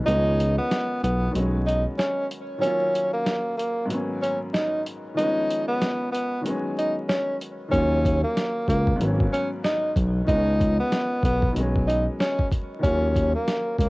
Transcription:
0.03 upright piano D#3 F3, tenor saxophone D#4
0.07 analog synth bass C#2, upright piano G#3 B3, closed hi-hat
0.12 upright piano C#4
0.40 closed hi-hat
0.58 tenor saxophone B3
0.71 snare, closed hi-hat
1.03 analog synth bass B1, tenor saxophone B3, closed hi-hat
1.31 upright piano D#3 F#3
1.35 analog synth bass B1, upright piano G#3 B3, closed hi-hat
1.39 upright piano C#4
1.66 tenor saxophone D#4, closed hi-hat
1.98 tenor saxophone C#4, snare, closed hi-hat
2.31 closed hi-hat
2.58 upright piano D#3 F#3, tenor saxophone C#4
2.62 upright piano A#3 C#4, closed hi-hat
2.66 upright piano F4
2.95 closed hi-hat
3.13 tenor saxophone A#3
3.26 snare, closed hi-hat
3.57 tenor saxophone A#3, closed hi-hat
3.85 upright piano G#2 D#3 F#3
3.90 upright piano A#3 B3 C#4, closed hi-hat
4.22 tenor saxophone C#4, closed hi-hat
4.53 tenor saxophone D#4, snare, closed hi-hat
4.86 closed hi-hat
5.14 upright piano D#3 F3, tenor saxophone D#4
5.18 upright piano G#3 B3, closed hi-hat
5.22 upright piano C#4
5.51 closed hi-hat
5.68 tenor saxophone B3
5.82 snare, closed hi-hat
6.12 tenor saxophone B3, closed hi-hat
6.41 upright piano D#3 F#3
6.45 upright piano G#3 B3, closed hi-hat
6.49 upright piano C#4
6.78 tenor saxophone D#4, closed hi-hat
7.09 tenor saxophone C#4, snare, closed hi-hat
7.41 closed hi-hat
7.68 upright piano D#3 F#3, tenor saxophone C#4
7.73 analog synth bass D#2, upright piano A#3 C#4, kick, closed hi-hat
7.77 upright piano F4
8.05 kick, closed hi-hat
8.24 tenor saxophone A#3
8.37 snare, closed hi-hat
8.68 analog synth bass C#2, tenor saxophone A#3, kick, closed hi-hat
8.87 kick
8.96 upright piano G#2 D#3 F#3
9.01 analog synth bass G#1, upright piano A#3 B3 C#4, closed hi-hat
9.20 kick
9.32 tenor saxophone C#4, closed hi-hat
9.65 tenor saxophone D#4, snare, closed hi-hat
9.96 analog synth bass B1, kick, closed hi-hat
10.24 upright piano D#3 F3, tenor saxophone D#4, kick
10.28 analog synth bass C#2, upright piano G#3 B3, closed hi-hat
10.33 upright piano C#4
10.61 kick, closed hi-hat
10.80 tenor saxophone B3
10.92 snare, closed hi-hat
11.23 analog synth bass B1, tenor saxophone B3, kick, closed hi-hat
11.42 kick
11.52 upright piano D#3 F#3
11.56 analog synth bass B1, upright piano G#3 B3, closed hi-hat
11.60 upright piano C#4
11.76 kick
11.87 tenor saxophone D#4, closed hi-hat
12.20 tenor saxophone C#4, snare, closed hi-hat
12.39 kick
12.51 kick, closed hi-hat
12.79 upright piano D#3 F#3
12.83 analog synth bass D#2, upright piano A#3 C#4, tenor saxophone C#4, kick, closed hi-hat
12.87 upright piano F4
13.16 kick, closed hi-hat
13.35 tenor saxophone A#3
13.48 snare, closed hi-hat
13.78 analog synth bass C#2, tenor saxophone A#3, kick, closed hi-hat

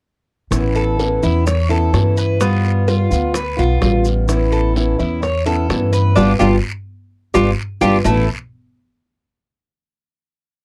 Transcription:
0.51 upright bass A1, steel-string acoustic guitar E3 B3 C#4 E4, high bongo, long guiro, maracas
0.76 cuban tres A4, maracas
0.99 steel-string acoustic guitar E3 B3 C#4 E4, high bongo, short guiro, maracas
1.22 upright bass E2, steel-string acoustic guitar B3 C#4 E4, cuban tres E4, short guiro, maracas
1.46 cuban tres C#5, muted steel-string acoustic guitar stroke, high bongo, long guiro, maracas
1.69 steel-string acoustic guitar B3 C#4 E4, cuban tres A4, maracas
1.93 upright bass G2, steel-string acoustic guitar E3 B3 C#4 E4, high bongo, low bongo, short guiro, maracas
2.17 cuban tres B4, short guiro, maracas
2.40 steel-string acoustic guitar G3 B3 F4, cuban tres B3, high bongo, long guiro, maracas
2.64 high bongo, maracas
2.87 steel-string acoustic guitar G3 B3 F4, cuban tres F4, high bongo, short guiro, maracas
3.10 upright bass D2, steel-string acoustic guitar B3 F4, short guiro, maracas
3.34 cuban tres B4, muted steel-string acoustic guitar stroke, high bongo, long guiro, maracas
3.57 upright bass B1, steel-string acoustic guitar B3 F4, cuban tres F4, high bongo, maracas
3.81 upright bass A1, steel-string acoustic guitar G3 B3 F4, high bongo, low bongo, short guiro, maracas
4.05 high bongo, short guiro, maracas
4.28 steel-string acoustic guitar E3 B3 C#4 E4, high bongo, long guiro, maracas
4.52 cuban tres A4, maracas
4.75 steel-string acoustic guitar E3 B3 C#4 E4, high bongo, short guiro, maracas
4.99 upright bass E2, steel-string acoustic guitar B3 C#4 E4, cuban tres E4, short guiro, maracas
5.22 cuban tres C#5, muted steel-string acoustic guitar stroke, high bongo, long guiro, maracas
5.46 steel-string acoustic guitar B3 C#4 E4, cuban tres A4, maracas
5.69 upright bass G2, steel-string acoustic guitar E3 B3 C#4 E4, high bongo, low bongo, short guiro, maracas
5.93 cuban tres B4, short guiro, maracas
6.16 upright bass G1, steel-string acoustic guitar G3 B3 D4, cuban tres D4 F4 G4, low bongo, long guiro, maracas
6.39 upright bass G1, steel-string acoustic guitar G3 B3 D4, cuban tres D4 F4 G4, low bongo, long guiro, maracas
7.34 upright bass G1, steel-string acoustic guitar G3 B3 D4, cuban tres D4 F4 G4, low bongo, long guiro, maracas
7.81 upright bass G1, steel-string acoustic guitar G3 B3 D4, cuban tres D4 F4 G4, low bongo, long guiro, maracas
8.04 upright bass A1, steel-string acoustic guitar A2 E3 B3 C#4 E4, cuban tres A3 E4 A4, low bongo, long guiro, maracas

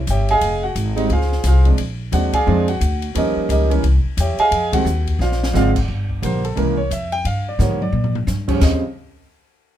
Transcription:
0.07 upright bass G1, grand piano G4 C#5 E5 G5, kick, hi-hat pedal, ride
0.29 grand piano G#4 D#5 F5 G#5, ride
0.41 upright bass F1, kick, ride
0.63 grand piano F#4 F#5
0.75 upright bass G#1, kick, hi-hat pedal, ride
0.96 grand piano G3 G#3 C4 D#4, ride
1.09 upright bass C#2, grand piano F4 G#4 C5 F5, kick, ride
1.21 snare
1.32 snare
1.44 upright bass C2, grand piano G#4 F5, snare, hi-hat pedal, ride
1.48 grand piano F4 C5
1.65 grand piano F3 G#3 C4 D4, kick, ride
1.78 upright bass A#1, ride
2.12 upright bass D#2, grand piano F3 G#3 C4 D4 F#4 F#5, hi-hat pedal, ride
2.33 grand piano G#4 D5 F5 G#5, kick, ride
2.47 upright bass F2, grand piano F3 G#3 C4 D4
2.68 grand piano F#4 F#5, ride
2.81 upright bass D2, kick, hi-hat pedal, ride
3.02 ride
3.15 upright bass D#2, grand piano F3 G3 A#3 C#4 D#4 G4 A#4 D#5, kick, ride
3.36 muted upright bass stroke
3.49 upright bass C#2, grand piano D#4 G4 A#4 D#5, kick, hi-hat pedal, ride
3.70 grand piano E3 G3 A#3 C#4, ride
3.83 upright bass C2, kick, ride
4.04 muted upright bass stroke
4.17 upright bass E2, grand piano G4 C#5 E5 G5, kick, hi-hat pedal, ride
4.38 grand piano G#4 D#5 F5 G#5, muted upright bass stroke, ride
4.51 upright bass F2, kick, ride
4.72 grand piano D#3 G3 G#3 C4 F#4 F#5, kick, ride
4.85 upright bass D#2, hi-hat pedal
5.07 kick, ride
5.19 upright bass A#1, grand piano F4 C5 D5 F5, snare
5.32 snare
5.43 snare
5.53 upright bass G#1, grand piano D3 F3 G#3 C4 F4 C5 D5 F5, snare, hi-hat pedal
5.75 kick, crash
5.88 upright bass G1, kick
6.10 kick
6.22 upright bass A#1, grand piano D3 F3 G3 A#3 C5, kick, hi-hat pedal, ride
6.45 grand piano A4, ride
6.56 upright bass C2, grand piano C#3 E3 G#3 A#3 A#4, kick, ride
6.77 grand piano C#5
6.91 upright bass F2, grand piano E5, kick, hi-hat pedal, ride
7.12 grand piano G5, ride
7.25 upright bass G2, grand piano F5, kick, ride
7.49 grand piano D5
7.59 upright bass G#2, grand piano D3 F3 G3 A#3 C#5, snare, hi-hat pedal
7.71 mid tom
7.82 grand piano D5, high tom
7.92 upright bass A#2, floor tom
8.04 floor tom
8.15 floor tom
8.27 upright bass G2, snare, hi-hat pedal
8.48 grand piano D#2 C#3 F3 G3 C#4, kick, crash
8.61 upright bass D#2, grand piano C#3 F3 G3 C4 D#5, kick, snare, crash

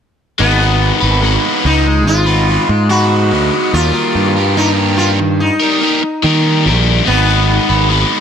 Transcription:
0.39 picked electric bass G#1, overdriven electric guitar G#3 B3 D#4 B4, sitar B3
0.59 overdriven electric guitar B3 D#4 B4
1.01 picked electric bass G#1, overdriven electric guitar B3 D#4 B4
1.19 overdriven electric guitar G#3 D#4, sitar A#3
1.24 overdriven electric guitar B3 B4
1.64 picked electric bass C#2, overdriven electric guitar G#3 B3 D#4 B4, sitar D#4
1.86 muted overdriven electric guitar stroke
2.06 picked electric bass G#1, sitar F4
2.27 overdriven electric guitar B3 D#4 B4
2.48 overdriven electric guitar G#3 B3 D#4 B4
2.69 picked electric bass G#2, muted overdriven electric guitar stroke
2.90 overdriven electric guitar G#3 B3 D#4 B4, sitar F#4
3.31 picked electric bass D2, overdriven electric guitar G#3 B3 D#4 B4
3.73 picked electric bass D#2, overdriven electric guitar D#3 G3 A#3 G4 A#4, sitar F4
3.94 overdriven electric guitar G3 G4 A#4
4.15 picked electric bass G2
4.36 overdriven electric guitar G3 G4 A#4
4.56 overdriven electric guitar D#3 G3 A#3 G4 A#4, sitar D#4
4.97 overdriven electric guitar G3 A#3 G4 A#4, sitar F4
5.19 muted overdriven electric guitar stroke
5.40 sitar D#4
5.60 overdriven electric guitar G3 G4 A#4
5.80 overdriven electric guitar G3 A#3 G4 A#4
6.03 muted overdriven electric guitar stroke
6.23 overdriven electric guitar D#3 G3 A#3 G4 A#4, picked electric bass D#3
6.65 picked electric bass A#1, overdriven electric guitar G3 A#3 G4 A#4
7.05 picked electric bass G#1, overdriven electric guitar G#3 B3 D#4 B4, sitar B3
7.26 overdriven electric guitar B3 D#4 B4
7.69 picked electric bass G#1, overdriven electric guitar B3 D#4 B4
7.89 overdriven electric guitar G#3 B3 D#4
7.93 overdriven electric guitar B4

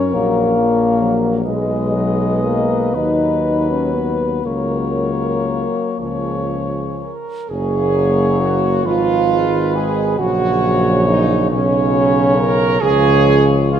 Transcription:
Already playing: tuba F#2, euphonium C#4, french horn section A#4, cornet C#5
0.14 tuba A#1, trombone F#3, euphonium A#3
0.58 trombone F3
1.01 trombone F#3
1.45 tuba B1, euphonium G#3, trombone G#3, french horn section B4, cornet D#5
1.93 euphonium F#3
2.43 euphonium A#3
2.94 tuba D#2, trombone F#3, euphonium D#4, cornet B4
3.70 euphonium C#4
3.94 euphonium B3
4.45 tuba C#2, trombone F#3, euphonium A#3, french horn section A#4, cornet C#5
5.98 tuba C#2, trombone F3, french horn section C#4 G#4, cornet C#5
7.01 french horn section A#4
7.49 tuba F#1, trombone F#3, euphonium A#3, french horn section G#4, cornet C#5
8.40 french horn section F#4
8.83 tuba G#1, trombone F3, euphonium G#3, french horn section F4, cornet B4
9.52 trombone D#3
9.75 french horn section G#4
10.19 tuba A#1, trombone C#3, euphonium F#3, french horn section F#4, cornet C#5
11.08 french horn section D#4
11.50 tuba B1, trombone C#3, euphonium F#3, french horn section C#4, cornet C#5
12.36 french horn section A#4
12.80 tuba C#2, trombone C#3, euphonium F3, french horn section G#4, cornet C#5
13.68 french horn section F4

